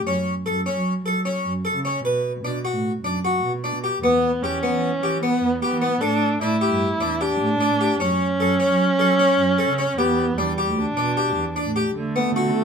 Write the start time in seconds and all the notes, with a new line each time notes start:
0.05 F#2 C#4
0.46 F#2 A4
0.66 C#4
0.75 F#3
1.05 F#3 A4
1.25 C#4
1.44 F#2
1.65 A4
1.74 C#3
1.85 C#4
2.04 B2 B4
2.44 B2 D4
2.65 F#4
2.73 A2
3.03 F#2 D4
3.25 F#4
3.44 B2
3.64 D4
3.72 B2
3.84 G4
4.02 E2 B3
4.43 E2 C#4 G4
4.63 B3
4.73 E3
5.02 E3 G4
5.23 B3
5.42 E2
5.62 B3 G4
5.72 E3
5.82 B3
6.01 A2 D4 A4
6.41 A2 D4 E4
6.61 G4
6.71 G2
7.00 E2 D4
7.21 D4 G4
7.40 A2
7.60 D4
7.69 A2
7.81 G4
7.99 F#2 C#4
8.39 F#2 A4
8.60 C#4
8.69 F#3
8.99 F#3 A4
9.19 C#4
9.38 F#2
9.58 A4
9.68 C#3
9.78 C#4
9.98 E2 B3 G4
10.37 E2 G3 D4
10.58 G4
10.66 D2
10.78 D4
10.96 B2 D4
11.17 G4
11.36 E2
11.56 D4
11.65 A2
11.76 G4
11.95 D3 A3 B3 F#4
12.16 B3
12.35 D3 F#4